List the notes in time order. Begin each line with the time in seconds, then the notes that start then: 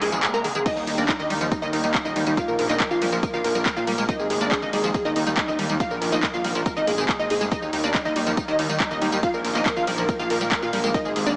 Already playing: C3 G#3 A#3, noise sweep
0.02 A#1 D#4 G#4, open hi-hat
0.12 G#1 F3 G#4, closed hi-hat, tambourine
0.23 A#2 G#4, clap, closed hi-hat, tambourine
0.34 A#3 A#4 A#5, tambourine
0.44 D#3 G#4, open hi-hat
0.55 D#3 G#4, closed hi-hat, tambourine
0.66 D#3 G3 A#3 D#4 D#5, kick, closed hi-hat, crash, ride, tambourine
0.76 D#2 D#4, tambourine
0.87 D#2 D#4, open hi-hat, ride
0.98 D#2 A#3 D4 D5, closed hi-hat, tambourine
1.09 D#3 D#4, kick, clap, closed hi-hat, ride, tambourine
1.19 D#2 D#3 D#4 D#5, tambourine
1.30 D#2 G3 D#4, open hi-hat, ride
1.41 D#2 F3 D#4, closed hi-hat, tambourine
1.51 D#4, kick, closed hi-hat, ride, tambourine
1.62 D#2 D#3 D#4 D#5, tambourine
1.73 D#2 D#4, open hi-hat, ride
1.84 D#2 G3 D#4, closed hi-hat, tambourine
1.94 A#3 D#4, kick, clap, closed hi-hat, ride, tambourine
2.05 D#1 D#3 D#4 D#5, tambourine
2.16 D#2 G3 D#4, open hi-hat, ride
2.27 D#2 G3 D#4, closed hi-hat, tambourine
2.37 D#3 F3 F4 F5, kick, closed hi-hat, ride, tambourine
2.48 A#1 A#4, tambourine
2.58 A#1 D#2 A#4, open hi-hat, ride
2.69 A#1 A#3 D#4 D#5, clap, closed hi-hat, tambourine
2.80 D#3 A#4, kick, clap, closed hi-hat, ride, tambourine
2.91 A#1 D#3 F4 F5, tambourine
3.02 A#1 G3 A#4, open hi-hat, ride
3.12 A#1 F3 A#4, closed hi-hat, tambourine
3.23 D#4 A#4, kick, closed hi-hat, ride, tambourine
3.34 A#1 D#3 F4 F5, tambourine
3.44 A#1 D#2 A#4, open hi-hat, ride
3.55 A#1 G3 A#4, closed hi-hat, tambourine
3.66 A#3 A#4, kick, clap, closed hi-hat, ride, tambourine
3.76 A#2 D#3 F4 F5, tambourine
3.87 A#1 G3 A#4, open hi-hat, ride
3.98 A#1 G#3 A#4, closed hi-hat, tambourine
4.09 C3 D#3 G#3 D#4 D#5, kick, closed hi-hat, ride, tambourine
4.19 G#1 G#4, tambourine
4.30 G#1 D#2 G#4, open hi-hat, ride
4.41 G#1 A#3 D4 D5, closed hi-hat, tambourine
4.52 D#3 G#4, kick, clap, closed hi-hat, ride, tambourine
4.62 G#1 D#3 D#4 D#5, tambourine
4.73 G#1 G3 G#4, open hi-hat, ride
4.84 G#1 F3 G#4, closed hi-hat, tambourine
4.94 D#3 G3 D#4 G#4, kick, closed hi-hat, ride, tambourine
5.05 D#2 D#3 D#4 D#5, tambourine
5.16 D#2 D#4, open hi-hat, ride
5.26 D#2 G3 D#4, closed hi-hat, tambourine
5.37 A#3 D#4, kick, clap, closed hi-hat, ride, tambourine
5.48 D#1 D#3 D#4 D#5, tambourine
5.59 D#2 G3 D#4, open hi-hat, ride
5.69 D#2 G3 D#4, closed hi-hat, tambourine
5.80 D#3 F3 F4 F5, kick, closed hi-hat, ride, tambourine
5.91 A#1 A#4, tambourine
6.01 A#1 D#2 A#4, open hi-hat, ride
6.12 A#1 A#3 D#4 D#5, clap, closed hi-hat, tambourine
6.23 D#3 A#4, kick, clap, closed hi-hat, ride, tambourine
6.34 A#1 D#3 F4 F5, tambourine
6.44 A#1 G3 A#4, open hi-hat, ride
6.55 A#1 F3 A#4, closed hi-hat, tambourine
6.66 C3 G#3 A#3 D#4 A#4, kick, closed hi-hat, ride, tambourine
6.77 G#1 D#3 D#4 D#5, tambourine
6.87 A#1 A#3 G#4, open hi-hat, ride
6.98 G#1 D#3 G#4, closed hi-hat, tambourine
7.09 D#3 G#4, kick, clap, closed hi-hat, ride, tambourine
7.19 G#1 D#4 D#5, tambourine
7.30 G#1 D#4 G#4, open hi-hat, ride
7.41 G#1 G#3 G#4, closed hi-hat, tambourine
7.51 D#3 G3 D#4 D#5, kick, closed hi-hat, ride, tambourine
7.62 D#2 D#4, tambourine
7.73 D#2 D#4, open hi-hat, ride
7.84 D#2 A#3 D4 D5, closed hi-hat, tambourine
7.94 D#3 D#4, kick, clap, closed hi-hat, ride, tambourine
8.05 D#2 D#3 D#4 D#5, tambourine
8.16 D#2 G3 D#4, open hi-hat, ride
8.27 D#2 F3 D#4, closed hi-hat, tambourine
8.37 D#4, kick, closed hi-hat, ride, tambourine
8.48 D#2 D#3 D#4 D#5, tambourine
8.59 D#2 D#4, open hi-hat, ride
8.69 D#2 G3 D#4, closed hi-hat, tambourine
8.80 A#3 D#4, kick, clap, closed hi-hat, ride, tambourine
8.91 D#1 D#3 D#4 D#5, tambourine
9.02 D#2 G3 D#4, open hi-hat, ride
9.12 D#2 G3 D#4, closed hi-hat, tambourine
9.23 D#3 F3 F4 F5, kick, closed hi-hat, ride, tambourine
9.34 A#1 A#4, tambourine
9.44 A#1 D#2 A#4, open hi-hat, ride
9.55 A#1 A#3 D#4 D#5, clap, closed hi-hat, tambourine
9.66 D#3 A#4, kick, clap, closed hi-hat, ride, tambourine
9.76 A#1 D#3 F4 F5, tambourine
9.87 A#1 G3 A#4, open hi-hat, ride
9.98 A#1 F3 A#4, closed hi-hat, tambourine
10.09 D#4 A#4, kick, closed hi-hat, ride, tambourine
10.19 A#1 D#3 F4 F5, tambourine
10.30 A#1 D#2 A#4, open hi-hat, ride
10.41 A#1 G3 A#4, closed hi-hat, tambourine
10.52 A#3 A#4, kick, clap, closed hi-hat, ride, tambourine
10.62 A#2 D#3 F4 F5, tambourine
10.73 A#1 G3 A#4, open hi-hat, ride
10.84 A#1 G#3 A#4, closed hi-hat, tambourine
10.94 C3 D#3 G#3 D#4 D#5, kick, closed hi-hat, ride, tambourine
11.05 G#1 G#4, tambourine
11.16 G#1 D#2 G#4, open hi-hat, ride
11.26 G#1 A#3 D4 D5, closed hi-hat, tambourine